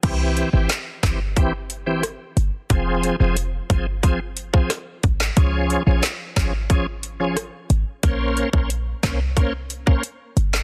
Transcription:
<<
  \new Staff \with { instrumentName = "Tonewheel organ" } { \time 4/4 \key c \phrygian \tempo 4 = 90 <e c' g'>8. <e c' g'>16 r8 <e c' g'>16 r16 <e c' g'>16 r8 <e c' g'>16 r4 | <f c' aes'>8. <f c' aes'>16 r8 <f c' aes'>16 r16 <f c' aes'>16 r8 <f c' aes'>16 r4 | <f des' aes'>8. <f des' aes'>16 r8 <f des' aes'>16 r16 <f des' aes'>16 r8 <f des' aes'>16 r4 | <bes des' c''>8. <bes des' c''>16 r8 <bes des' c''>16 r16 <bes des' c''>16 r8 <bes des' c''>16 r4 | }
  \new Staff \with { instrumentName = "808-style bass" } { \clef bass \time 4/4 \key c \phrygian c,8. aes,,16 r8 g,,4.~ g,,16 r16 g,,16 r16 | f,,8. f,,8. g,,4. r8 aes,,8 | des,8. bes,,16 r8 aes,,4.~ aes,,16 r16 aes,,16 r16 | bes,,8. bes,,8. c,4. r8 g,,8 | }
  \new DrumStaff \with { instrumentName = "Drums" } \drummode { \time 4/4 <cymc hh bd>8 hh8 <hc hh sn>8 <hc hh bd sn>8 <hh bd>8 hh8 <hh ss>8 hh8 | <hh bd>8 hh8 hh8 <hh bd>8 <hh bd>8 hh16 bd16 <hh ss sn>8 <hh bd>16 <hc sn>16 | <hh bd>8 hh8 <hc hh sn>8 <hc hh bd sn>8 <hh bd>8 hh8 <hh ss>8 hh8 | <hh bd>8 hh16 bd16 hh8 <hc hh bd sn>8 <hh bd>8 hh16 bd16 hh8 hh16 <hc sn>16 | }
>>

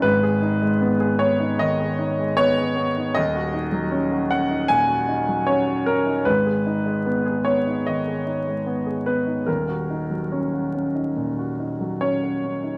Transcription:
\new Staff \with { instrumentName = "Grand piano" } { \time 4/4 \key dis \phrygian \tempo 4 = 76 << { b'4. cis''8 dis''4 cis''4 | dis''4. fis''8 gis''4 cis''8 ais'8 | b'4. cis''8 dis''4. b'8 | ais'2. cis''4 | } \\ { <gis,, gis,>16 gis'16 dis'16 gis16 b16 gis'16 b16 dis'16 dis16 gis'16 dis'16 gis16 b16 gis'16 b16 dis'16 | <dis,, dis,>16 fis'16 dis'16 fis16 cis'16 fis'16 cis'16 dis'16 ais,16 fis'16 dis'16 fis16 cis'16 fis'16 cis'16 dis'16 | <gis,, gis,>16 gis'16 dis'16 gis16 b16 gis'16 b16 dis'16 dis16 gis'16 dis'16 gis16 b16 gis'16 b16 dis'16 | <dis,, dis,>16 fis'16 dis'16 fis16 cis'16 fis'16 cis'16 dis'16 ais,16 fis'16 dis'16 fis16 cis'16 fis'16 cis'16 dis'16 | } >> }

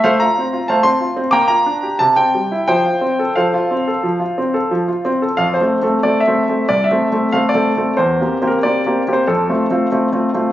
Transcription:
\new Staff \with { instrumentName = "Grand piano" } { \time 4/4 \key f \major \tempo 4 = 92 << { <a' c'' f''>16 bes''8. <c'' f'' a''>16 c'''8. <g'' bes'' d'''>16 bes''8. a''16 g''8. | <c'' g''>4 <a' c'' f''>2~ <a' c'' f''>8 r8 | f''16 c''8. d''16 e''8. d''16 e''8. f''16 d''8. | c''8. bes'16 d''8. c''16 a'4. r8 | } \\ { a16 f'16 c'16 f'16 a16 c'16 f'16 c'16 bes16 f'16 d'16 g'16 c16 c'16 g16 e'16 | f16 f'16 c'16 a'16 f16 f'16 c'16 a'16 f16 f'16 c'16 a'16 f16 f'16 c'16 a'16 | \tuplet 3/2 { f,8 <a c' a'>8 <a c' a'>8 <a c' a'>8 <a c' a'>8 <a c' a'>8 c,8 <a c' a'>8 <a c' a'>8 <a c' a'>8 <a c' a'>8 <a c' a'>8 } | \tuplet 3/2 { e,8 <bes c' g'>8 <bes c' g'>8 <bes c' g'>8 <bes c' g'>8 <bes c' g'>8 f,8 <a c' f'>8 <a c' f'>8 <a c' f'>8 <a c' f'>8 <a c' f'>8 } | } >> }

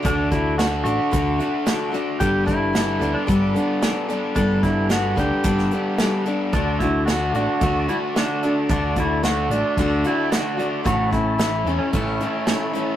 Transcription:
<<
  \new Staff \with { instrumentName = "Tonewheel organ" } { \time 4/4 \key d \major \tempo 4 = 111 << { r1 | r1 | r1 | <fis' d'' a''>1~ |
<fis' d'' a''>1 | <e' cis'' a''>1 | } \\ { r1 | r1 | r1 | a'1~ |
a'1~ | a'1 | } >> }
  \new Staff \with { instrumentName = "Pedal steel guitar" } { \time 4/4 \key d \major d'8 e'8 fis'8 fis'2 r8 | g'8 e'4~ e'16 d'16 d'4. r8 | d'8 e'8 fis'8 g'2 r8 | d'8 e'8 fis'8 fis'4 e'8 d'8. r16 |
d'8 e'8 fis'8 d'8 d'8 e'8 fis'8. r16 | fis'8 e'4~ e'16 cis'16 cis'4. r8 | }
  \new Staff \with { instrumentName = "Steel-string acoustic guitar" } { \time 4/4 \key d \major <d d' fis' a'>8 <d' fis' a'>8 <d d' fis' a'>8 <d' fis' a'>8 <d d' fis' a'>8 <d' fis' a'>8 <d d' fis' a'>8 <d' fis' a'>8 | <g b d' a'>8 <b d' a'>8 <g b d' a'>8 <b d' a'>8 <g b d' a'>8 <b d' a'>8 <g b d' a'>8 <b d' a'>8 | <g b d' a'>8 <b d' a'>8 <g b d' a'>8 <b d' a'>8 <g b d' a'>8 <b d' a'>8 <g b d' a'>8 <b d' a'>8 | <d a d' fis'>8 <a d' fis'>8 <d a d' fis'>8 <a d' fis'>8 <d a d' fis'>8 <a d' fis'>8 <d a d' fis'>8 <a d' fis'>8 |
<d a d' fis'>8 <a d' fis'>8 <d a d' fis'>8 <a d' fis'>8 <d a d' fis'>8 <a d' fis'>8 <d a d' fis'>8 <a d' fis'>8 | <a, e a cis' e'>8 <a cis' e'>8 <e a cis' e'>8 <a cis' e'>8 <a, e a cis' e'>8 <a cis' e'>8 <e a cis' e'>8 <a cis' e'>8 | }
  \new Staff \with { instrumentName = "Overdriven electric guitar" } { \time 4/4 \key d \major <d d' fis'>4 fis'8 d'8 d8 fis'8 d8 d'8 | g4 b8 d'8 g8 b8 g8 d'8 | g4 b8 d'8 g8 b8 g8 d'8 | d4 fis'8 d'8 d8 fis'8 d8 d'8 |
d4 fis'8 d'8 d8 fis'8 d8 d'8 | a,4 e'8 cis'8 a8 e'8 a8 cis'8 | }
  \new Staff \with { instrumentName = "Fingered electric bass" } { \clef bass \time 4/4 \key d \major d,4. a,,16 r16 d,8 r4. | g,,4. d,16 r16 g,,8 r4. | g,,4. d,16 r16 g,,8 r4. | d,4. a,,16 r16 d,8 r4. |
d,4. a,,16 r16 d,8 r4. | a,,4. e,16 r16 a,,8 r4. | }
  \new DrumStaff \with { instrumentName = "Drums" } \drummode { \time 4/4 <hh bd>8 <hh bd>8 <hh sn>8 hh8 <hh bd>8 hh8 <hh sn>8 hh8 | <hh bd>8 <hh bd>8 <hh sn>8 hh8 <hh bd>8 hh8 <hh sn>8 hh8 | <hh bd>8 <hh bd>8 <hh sn>8 <hh bd>8 <hh bd>16 sn16 hh8 <hh sn>8 hh8 | <hh bd>8 <hh bd>8 <hh sn>8 hh8 <hh bd>8 hh8 <hh sn>8 hh8 |
<hh bd>8 <hh bd>8 <hh sn>8 hh8 <hh bd>8 hh8 <hh sn>8 hh8 | <hh bd>8 <hh bd>8 <hh sn>8 hh8 <hh bd>8 hh8 <hh sn>8 hh8 | }
>>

